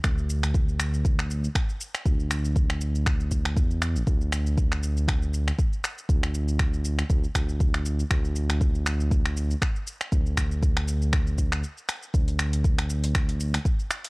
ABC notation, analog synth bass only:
X:1
M:4/4
L:1/16
Q:"Swing 16ths" 1/4=119
K:Cmix
V:1 name="Analog synth bass" clef=bass
D,,8- D,,3 z4 z | D,,12 E,,3 A,,, | D,,8- D,,3 z4 z | D,,6- D,, z D,, z D,,4- D,, z |
D,,8- D,,3 z4 z | D,,8- D,,2 D,,2 z4 | D,,8- D,,3 z4 z |]